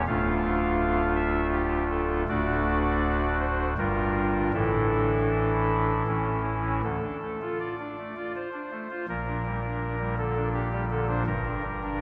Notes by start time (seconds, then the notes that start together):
0.07 D1 D2 A3 D4 F4 F5
1.16 E5
1.52 G4
1.90 A4
2.28 D1 D2 A3 D4 F#4 D5
3.40 C5
3.77 G1 G2 G3 D4 F4 A#4
4.53 A1 A2 E3 D4 E4 A4
6.07 A1 A2 E3 C#4 E4
6.83 D2 D3 A4
7.02 D4
7.22 A3
7.42 F4
7.60 D5
7.79 D4
7.98 A3
8.16 F4
8.35 C5
8.53 D4
8.71 A3
8.90 F4
9.08 A#1 A#2 A#4
9.27 D4
9.46 G3
9.63 D4
9.99 G3
10.18 D3 A4
10.36 D4
10.54 G4
10.72 G3
10.91 D3 A4
11.08 D4 C5
11.26 G1 G2 A#4
11.45 D4
11.63 G3
11.83 D4